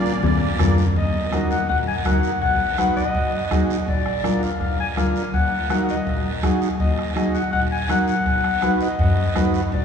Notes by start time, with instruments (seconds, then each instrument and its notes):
Already playing: clarinet A#3, transistor combo organ D4 F4 A#4, accordion D5
0.06 short guiro
0.23 upright bass F2, clarinet A#3, accordion D5, bombo low, high conga, low conga, long guiro
0.59 upright bass F2, transistor combo organ D4 F4 A#4, bombo low, bombo rim, high conga, low conga, short guiro
0.78 short guiro
0.96 upright bass D#2, clarinet D#5, bombo low, high conga, long guiro
1.32 transistor combo organ D#4 F#4 A#4, bombo rim, high conga, short guiro
1.51 clarinet F#5, short guiro
1.69 upright bass A#1, clarinet F#5, bombo low, high conga, long guiro
1.88 clarinet G#5
2.05 upright bass D2, transistor combo organ D#4 F#4 A#4, clarinet F#5, bombo rim, high conga, short guiro
2.23 short guiro
2.42 upright bass B1, clarinet F#5, bombo low, high conga, long guiro
2.78 transistor combo organ D#4 F#4 B4, clarinet F#5, bombo rim, high conga, short guiro
2.96 clarinet D#5, short guiro
3.15 upright bass F#2, bombo low, high conga, long guiro
3.51 upright bass D#2, transistor combo organ D#4 F#4 G#4, bombo low, bombo rim, high conga, short guiro
3.70 short guiro
3.87 upright bass A#1, clarinet D5, bombo low, high conga, long guiro
4.06 bombo rim
4.24 transistor combo organ D4 F4 A#4, bombo rim, high conga, short guiro
4.43 clarinet F5, short guiro
4.60 upright bass F2, clarinet F5, bombo low, high conga, long guiro
4.80 clarinet G#5
4.97 upright bass D2, transistor combo organ D4 F4 A#4, clarinet F5, bombo rim, high conga, short guiro
5.16 short guiro
5.33 upright bass D#2, clarinet F#5, bombo low, high conga, long guiro
5.69 transistor combo organ D#4 F#4 A#4, clarinet F#5, bombo rim, high conga, short guiro
5.89 clarinet D#5, short guiro
6.06 upright bass A#1, bombo low, high conga, long guiro
6.43 upright bass F#2, transistor combo organ D#4 F#4 G#4, bombo low, bombo rim, high conga, short guiro
6.62 short guiro
6.80 upright bass D#2, clarinet D#5, bombo low, high conga, long guiro
6.99 bombo rim
7.16 transistor combo organ D#4 F#4 G#4, clarinet D#5, bombo rim, high conga, short guiro
7.35 clarinet F#5, short guiro
7.53 upright bass A#1, clarinet F#5, bombo low, high conga, long guiro
7.72 clarinet G#5
7.89 upright bass F#2, transistor combo organ D#4 F#4 A#4, clarinet F#5, bombo rim, high conga, short guiro
8.08 clarinet F#5, short guiro
8.26 upright bass B1, bombo low, high conga, long guiro
8.44 bombo rim
8.62 transistor combo organ D#4 F#4 B4, bombo rim, high conga, short guiro
8.81 clarinet D#5, short guiro
8.99 upright bass F#2, bombo low, high conga, long guiro
9.35 upright bass D#2, transistor combo organ D#4 F#4 B4, bombo low, bombo rim, high conga, short guiro
9.54 short guiro
9.72 upright bass A#1, clarinet D5, bombo low, high conga, long guiro